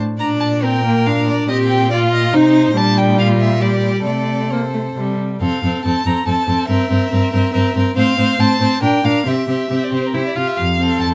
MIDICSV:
0, 0, Header, 1, 5, 480
1, 0, Start_track
1, 0, Key_signature, -1, "major"
1, 0, Tempo, 426743
1, 225, Time_signature, 3, 2, 24, 8
1, 4058, Tempo, 451128
1, 5978, Tempo, 425230
1, 9338, Tempo, 438276
1, 12351, End_track
2, 0, Start_track
2, 0, Title_t, "Violin"
2, 0, Program_c, 0, 40
2, 217, Note_on_c, 0, 82, 52
2, 307, Note_off_c, 0, 82, 0
2, 452, Note_on_c, 0, 81, 50
2, 542, Note_off_c, 0, 81, 0
2, 705, Note_on_c, 0, 79, 55
2, 1194, Note_on_c, 0, 77, 58
2, 1211, Note_off_c, 0, 79, 0
2, 1431, Note_off_c, 0, 77, 0
2, 1437, Note_on_c, 0, 74, 52
2, 1662, Note_off_c, 0, 74, 0
2, 1669, Note_on_c, 0, 75, 62
2, 1759, Note_off_c, 0, 75, 0
2, 1891, Note_on_c, 0, 79, 62
2, 2136, Note_off_c, 0, 79, 0
2, 2141, Note_on_c, 0, 74, 71
2, 2231, Note_off_c, 0, 74, 0
2, 2387, Note_on_c, 0, 75, 59
2, 2641, Note_on_c, 0, 72, 66
2, 2658, Note_off_c, 0, 75, 0
2, 3116, Note_on_c, 0, 81, 76
2, 3133, Note_off_c, 0, 72, 0
2, 3350, Note_on_c, 0, 79, 62
2, 3367, Note_off_c, 0, 81, 0
2, 3581, Note_off_c, 0, 79, 0
2, 3588, Note_on_c, 0, 77, 62
2, 3678, Note_off_c, 0, 77, 0
2, 3827, Note_on_c, 0, 76, 58
2, 4070, Note_on_c, 0, 74, 51
2, 4086, Note_off_c, 0, 76, 0
2, 4532, Note_off_c, 0, 74, 0
2, 4538, Note_on_c, 0, 74, 45
2, 5026, Note_on_c, 0, 72, 33
2, 5042, Note_off_c, 0, 74, 0
2, 5504, Note_off_c, 0, 72, 0
2, 5979, Note_on_c, 0, 77, 42
2, 6434, Note_off_c, 0, 77, 0
2, 6467, Note_on_c, 0, 81, 52
2, 6714, Note_on_c, 0, 82, 51
2, 6731, Note_off_c, 0, 81, 0
2, 6949, Note_off_c, 0, 82, 0
2, 6962, Note_on_c, 0, 81, 53
2, 7415, Note_off_c, 0, 81, 0
2, 7421, Note_on_c, 0, 76, 51
2, 8595, Note_off_c, 0, 76, 0
2, 8871, Note_on_c, 0, 77, 68
2, 9349, Note_on_c, 0, 81, 68
2, 9366, Note_off_c, 0, 77, 0
2, 9813, Note_off_c, 0, 81, 0
2, 9820, Note_on_c, 0, 79, 65
2, 10061, Note_on_c, 0, 77, 57
2, 10077, Note_off_c, 0, 79, 0
2, 10308, Note_on_c, 0, 76, 49
2, 10325, Note_off_c, 0, 77, 0
2, 10924, Note_on_c, 0, 74, 45
2, 10940, Note_off_c, 0, 76, 0
2, 11029, Note_off_c, 0, 74, 0
2, 11036, Note_on_c, 0, 72, 46
2, 11178, Note_on_c, 0, 70, 37
2, 11194, Note_off_c, 0, 72, 0
2, 11263, Note_off_c, 0, 70, 0
2, 11270, Note_on_c, 0, 72, 47
2, 11383, Note_off_c, 0, 72, 0
2, 11399, Note_on_c, 0, 74, 37
2, 11443, Note_off_c, 0, 74, 0
2, 11494, Note_on_c, 0, 77, 48
2, 11622, Note_on_c, 0, 76, 43
2, 11638, Note_off_c, 0, 77, 0
2, 11725, Note_on_c, 0, 77, 57
2, 11741, Note_off_c, 0, 76, 0
2, 12199, Note_off_c, 0, 77, 0
2, 12206, Note_on_c, 0, 81, 59
2, 12293, Note_off_c, 0, 81, 0
2, 12351, End_track
3, 0, Start_track
3, 0, Title_t, "Violin"
3, 0, Program_c, 1, 40
3, 226, Note_on_c, 1, 74, 43
3, 717, Note_on_c, 1, 70, 46
3, 733, Note_off_c, 1, 74, 0
3, 1669, Note_off_c, 1, 70, 0
3, 1676, Note_on_c, 1, 67, 50
3, 2143, Note_off_c, 1, 67, 0
3, 2152, Note_on_c, 1, 65, 55
3, 2620, Note_on_c, 1, 63, 59
3, 2637, Note_off_c, 1, 65, 0
3, 3091, Note_off_c, 1, 63, 0
3, 3097, Note_on_c, 1, 62, 48
3, 3573, Note_on_c, 1, 65, 50
3, 3590, Note_off_c, 1, 62, 0
3, 4052, Note_on_c, 1, 67, 42
3, 4068, Note_off_c, 1, 65, 0
3, 4516, Note_off_c, 1, 67, 0
3, 4522, Note_on_c, 1, 69, 36
3, 5713, Note_off_c, 1, 69, 0
3, 5979, Note_on_c, 1, 69, 35
3, 6220, Note_off_c, 1, 69, 0
3, 6231, Note_on_c, 1, 69, 31
3, 6467, Note_off_c, 1, 69, 0
3, 6478, Note_on_c, 1, 69, 33
3, 6701, Note_off_c, 1, 69, 0
3, 6708, Note_on_c, 1, 69, 32
3, 6927, Note_off_c, 1, 69, 0
3, 6934, Note_on_c, 1, 69, 35
3, 7173, Note_off_c, 1, 69, 0
3, 7186, Note_on_c, 1, 69, 37
3, 7416, Note_off_c, 1, 69, 0
3, 7423, Note_on_c, 1, 70, 38
3, 7659, Note_off_c, 1, 70, 0
3, 7670, Note_on_c, 1, 70, 37
3, 7898, Note_off_c, 1, 70, 0
3, 7905, Note_on_c, 1, 70, 43
3, 8137, Note_off_c, 1, 70, 0
3, 8144, Note_on_c, 1, 70, 41
3, 8370, Note_off_c, 1, 70, 0
3, 8377, Note_on_c, 1, 70, 49
3, 8614, Note_off_c, 1, 70, 0
3, 8636, Note_on_c, 1, 70, 44
3, 8852, Note_off_c, 1, 70, 0
3, 8859, Note_on_c, 1, 72, 49
3, 9094, Note_off_c, 1, 72, 0
3, 9113, Note_on_c, 1, 72, 43
3, 9341, Note_off_c, 1, 72, 0
3, 9346, Note_on_c, 1, 72, 45
3, 9573, Note_off_c, 1, 72, 0
3, 9583, Note_on_c, 1, 72, 39
3, 9807, Note_off_c, 1, 72, 0
3, 9813, Note_on_c, 1, 70, 41
3, 10049, Note_off_c, 1, 70, 0
3, 10068, Note_on_c, 1, 70, 39
3, 10290, Note_off_c, 1, 70, 0
3, 10296, Note_on_c, 1, 67, 36
3, 10527, Note_off_c, 1, 67, 0
3, 10534, Note_on_c, 1, 67, 33
3, 10761, Note_off_c, 1, 67, 0
3, 10768, Note_on_c, 1, 67, 32
3, 11009, Note_off_c, 1, 67, 0
3, 11015, Note_on_c, 1, 67, 30
3, 11254, Note_off_c, 1, 67, 0
3, 11266, Note_on_c, 1, 67, 33
3, 11498, Note_off_c, 1, 67, 0
3, 11514, Note_on_c, 1, 67, 29
3, 11742, Note_off_c, 1, 67, 0
3, 11998, Note_on_c, 1, 69, 35
3, 12351, Note_off_c, 1, 69, 0
3, 12351, End_track
4, 0, Start_track
4, 0, Title_t, "Viola"
4, 0, Program_c, 2, 41
4, 219, Note_on_c, 2, 62, 37
4, 719, Note_on_c, 2, 60, 38
4, 736, Note_off_c, 2, 62, 0
4, 959, Note_off_c, 2, 60, 0
4, 964, Note_on_c, 2, 58, 41
4, 1200, Note_on_c, 2, 62, 37
4, 1217, Note_off_c, 2, 58, 0
4, 1687, Note_on_c, 2, 60, 45
4, 1704, Note_off_c, 2, 62, 0
4, 2157, Note_off_c, 2, 60, 0
4, 2163, Note_on_c, 2, 65, 45
4, 2637, Note_on_c, 2, 63, 46
4, 2654, Note_off_c, 2, 65, 0
4, 3093, Note_off_c, 2, 63, 0
4, 3099, Note_on_c, 2, 55, 52
4, 4016, Note_off_c, 2, 55, 0
4, 4062, Note_on_c, 2, 55, 37
4, 4543, Note_on_c, 2, 57, 31
4, 4559, Note_off_c, 2, 55, 0
4, 5023, Note_off_c, 2, 57, 0
4, 5032, Note_on_c, 2, 58, 38
4, 5118, Note_off_c, 2, 58, 0
4, 5265, Note_on_c, 2, 57, 26
4, 5350, Note_off_c, 2, 57, 0
4, 5506, Note_on_c, 2, 55, 27
4, 5973, Note_off_c, 2, 55, 0
4, 5982, Note_on_c, 2, 60, 33
4, 6222, Note_off_c, 2, 60, 0
4, 6234, Note_on_c, 2, 60, 31
4, 6468, Note_off_c, 2, 60, 0
4, 6473, Note_on_c, 2, 60, 33
4, 6700, Note_off_c, 2, 60, 0
4, 6707, Note_on_c, 2, 60, 29
4, 6931, Note_off_c, 2, 60, 0
4, 6938, Note_on_c, 2, 60, 30
4, 7175, Note_off_c, 2, 60, 0
4, 7188, Note_on_c, 2, 60, 32
4, 7414, Note_off_c, 2, 60, 0
4, 7421, Note_on_c, 2, 60, 40
4, 7654, Note_off_c, 2, 60, 0
4, 7661, Note_on_c, 2, 60, 36
4, 7892, Note_off_c, 2, 60, 0
4, 7899, Note_on_c, 2, 60, 38
4, 8134, Note_off_c, 2, 60, 0
4, 8141, Note_on_c, 2, 60, 38
4, 8365, Note_off_c, 2, 60, 0
4, 8372, Note_on_c, 2, 60, 41
4, 8611, Note_off_c, 2, 60, 0
4, 8616, Note_on_c, 2, 60, 42
4, 8848, Note_off_c, 2, 60, 0
4, 8855, Note_on_c, 2, 60, 53
4, 9092, Note_off_c, 2, 60, 0
4, 9105, Note_on_c, 2, 60, 42
4, 9337, Note_off_c, 2, 60, 0
4, 9344, Note_on_c, 2, 60, 42
4, 9572, Note_off_c, 2, 60, 0
4, 9581, Note_on_c, 2, 60, 38
4, 9808, Note_off_c, 2, 60, 0
4, 9814, Note_on_c, 2, 62, 36
4, 10041, Note_off_c, 2, 62, 0
4, 10047, Note_on_c, 2, 62, 38
4, 10287, Note_off_c, 2, 62, 0
4, 10294, Note_on_c, 2, 60, 36
4, 10532, Note_off_c, 2, 60, 0
4, 10538, Note_on_c, 2, 60, 30
4, 10769, Note_off_c, 2, 60, 0
4, 10775, Note_on_c, 2, 60, 40
4, 11258, Note_on_c, 2, 64, 39
4, 11274, Note_off_c, 2, 60, 0
4, 11496, Note_on_c, 2, 65, 37
4, 11513, Note_off_c, 2, 64, 0
4, 11738, Note_off_c, 2, 65, 0
4, 11977, Note_on_c, 2, 60, 34
4, 12351, Note_off_c, 2, 60, 0
4, 12351, End_track
5, 0, Start_track
5, 0, Title_t, "Cello"
5, 0, Program_c, 3, 42
5, 215, Note_on_c, 3, 46, 40
5, 1626, Note_off_c, 3, 46, 0
5, 1678, Note_on_c, 3, 46, 49
5, 2621, Note_on_c, 3, 48, 50
5, 2637, Note_off_c, 3, 46, 0
5, 3089, Note_off_c, 3, 48, 0
5, 3095, Note_on_c, 3, 46, 50
5, 4488, Note_off_c, 3, 46, 0
5, 4531, Note_on_c, 3, 48, 34
5, 5480, Note_off_c, 3, 48, 0
5, 5498, Note_on_c, 3, 48, 28
5, 5753, Note_off_c, 3, 48, 0
5, 5973, Note_on_c, 3, 41, 38
5, 6063, Note_off_c, 3, 41, 0
5, 6225, Note_on_c, 3, 41, 37
5, 6315, Note_off_c, 3, 41, 0
5, 6475, Note_on_c, 3, 41, 34
5, 6565, Note_off_c, 3, 41, 0
5, 6709, Note_on_c, 3, 41, 33
5, 6800, Note_off_c, 3, 41, 0
5, 6943, Note_on_c, 3, 41, 39
5, 7034, Note_off_c, 3, 41, 0
5, 7178, Note_on_c, 3, 41, 36
5, 7268, Note_off_c, 3, 41, 0
5, 7416, Note_on_c, 3, 43, 44
5, 7506, Note_off_c, 3, 43, 0
5, 7660, Note_on_c, 3, 43, 44
5, 7751, Note_off_c, 3, 43, 0
5, 7911, Note_on_c, 3, 43, 49
5, 8001, Note_off_c, 3, 43, 0
5, 8148, Note_on_c, 3, 43, 46
5, 8238, Note_off_c, 3, 43, 0
5, 8384, Note_on_c, 3, 43, 46
5, 8474, Note_off_c, 3, 43, 0
5, 8624, Note_on_c, 3, 43, 44
5, 8714, Note_off_c, 3, 43, 0
5, 8860, Note_on_c, 3, 45, 52
5, 8950, Note_off_c, 3, 45, 0
5, 9103, Note_on_c, 3, 45, 48
5, 9193, Note_off_c, 3, 45, 0
5, 9334, Note_on_c, 3, 45, 52
5, 9422, Note_off_c, 3, 45, 0
5, 9574, Note_on_c, 3, 45, 45
5, 9662, Note_off_c, 3, 45, 0
5, 9811, Note_on_c, 3, 46, 41
5, 9899, Note_off_c, 3, 46, 0
5, 10053, Note_on_c, 3, 46, 38
5, 10141, Note_off_c, 3, 46, 0
5, 10290, Note_on_c, 3, 48, 42
5, 10377, Note_off_c, 3, 48, 0
5, 10530, Note_on_c, 3, 48, 35
5, 10618, Note_off_c, 3, 48, 0
5, 10781, Note_on_c, 3, 48, 35
5, 10868, Note_off_c, 3, 48, 0
5, 11017, Note_on_c, 3, 48, 35
5, 11104, Note_off_c, 3, 48, 0
5, 11256, Note_on_c, 3, 48, 33
5, 11344, Note_off_c, 3, 48, 0
5, 11496, Note_on_c, 3, 48, 33
5, 11584, Note_off_c, 3, 48, 0
5, 11739, Note_on_c, 3, 41, 47
5, 12163, Note_off_c, 3, 41, 0
5, 12219, Note_on_c, 3, 41, 42
5, 12351, Note_off_c, 3, 41, 0
5, 12351, End_track
0, 0, End_of_file